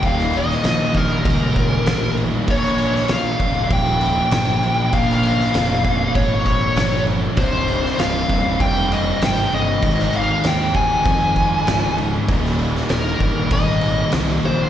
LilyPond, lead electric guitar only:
\new Staff \with { instrumentName = "Lead electric guitar" } { \time 4/4 \key bes \dorian \tempo 4 = 98 f''8 ees''4 bes'2 r8 | des''4 f''4 g''2 | f''2 des''4. r8 | c''4 f''4 g''8 ees''8 g''8 ees''8~ |
ees''8 f''8 g''8 aes''2 r8 | r4 bes'4 ees''4 r8 c''8 | }